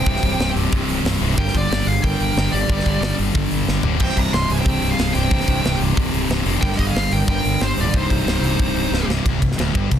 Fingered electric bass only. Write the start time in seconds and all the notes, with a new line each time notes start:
0.06 C1
0.23 C1
0.39 C1
0.55 C1
0.73 C1
0.88 C1
1.04 C1
1.21 C1
1.38 G1
1.55 G1
1.71 G1
1.87 G1
2.03 G1
2.21 G1
2.36 G1
2.53 G1
2.69 G1
2.86 G1
3.01 G1
3.19 G1
3.35 G1
3.51 G1
3.68 G1
3.85 D1
4.00 C1
4.17 C1
4.33 C1
4.50 C1
4.66 C1
4.82 C1
4.99 C1
5.15 C1
5.31 C1
5.48 C1
5.65 C1
5.81 C1
5.97 C1
6.14 C1
6.29 C1
6.46 F1
6.62 G1
6.79 G1
6.96 G1
7.12 G1
7.28 G1
7.45 G1
7.61 G1
7.77 D1
7.94 C1
8.10 C1
8.26 C1
8.43 C1
8.60 C1
8.74 C1
8.91 C1
9.08 C1
9.25 C1
9.42 C1
9.58 D1
9.75 G1
9.91 C1